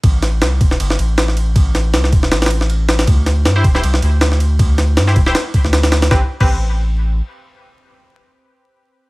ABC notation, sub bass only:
X:1
M:4/4
L:1/16
Q:"Swing 16ths" 1/4=158
K:Am
V:1 name="Sub bass" clef=bass
A,,,4 C,,2 E,,,2 G,,,2 A,,,6- | A,,,4 C,,2 E,,,2 A,,,8 | D,,4 G,,2 D,,,2 C,,2 D,,6- | D,,4 G,,2 D,,,2 z3 D,,4- D,, |
A,,, z2 A,,,8- A,,, z4 | z16 |]